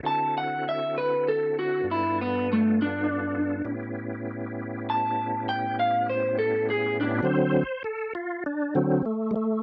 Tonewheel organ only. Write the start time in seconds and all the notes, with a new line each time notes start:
0.03 D3 C4 E4 F#4 A4
1.83 G2 B3 D4 F4 A4
3.64 A2 B3 C#4 E4 G4
7.23 D3 F#3 C4 C5
7.84 A4
8.15 F4
8.46 D4
8.75 D3 F#3 C4
9.06 A3
9.31 G#3
9.36 A3